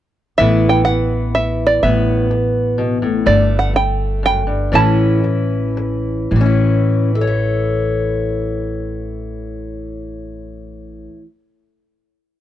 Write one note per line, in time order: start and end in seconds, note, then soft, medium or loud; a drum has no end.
0.38 1.80 A1 medium
0.38 0.87 A2 medium
0.38 3.27 E3 soft
0.38 1.80 B3 soft
0.38 1.81 E4 medium
0.38 0.71 E5 medium
0.69 0.84 G5 medium
0.85 1.34 F#5 medium
0.85 muted steel-string acoustic guitar stroke medium
1.35 1.68 E5 medium
1.35 muted steel-string acoustic guitar stroke medium
1.67 1.81 D5 medium
1.83 3.24 A1 medium
1.83 2.29 A2 medium
1.83 3.24 B3 medium
1.83 2.99 E5 medium
2.31 muted steel-string acoustic guitar stroke medium
2.78 3.02 B2 medium
3.02 3.26 A2 medium
3.26 4.70 G1 medium
3.26 3.72 G2 medium
3.26 4.73 A3 medium
3.26 3.56 D5 medium
3.59 3.74 F#5 medium
3.73 4.24 G5 medium
3.73 muted steel-string acoustic guitar stroke medium
4.23 4.46 F#2 medium
4.23 4.75 G5 medium
4.47 4.73 G2 medium
4.72 6.29 A1 medium
4.72 5.23 A2 medium
4.72 6.34 E3 soft
4.72 6.29 C#4 medium
4.72 6.29 E4 medium
4.72 5.74 A5 medium
5.24 muted steel-string acoustic guitar stroke medium
5.77 muted steel-string acoustic guitar stroke medium
6.31 11.07 A1 medium
6.31 11.10 A2 medium
6.36 11.15 E3 soft
6.41 7.15 C#4 medium
6.46 7.21 E4 soft
7.15 11.18 A4 medium
7.21 11.21 C#5 medium
7.27 11.24 E5 medium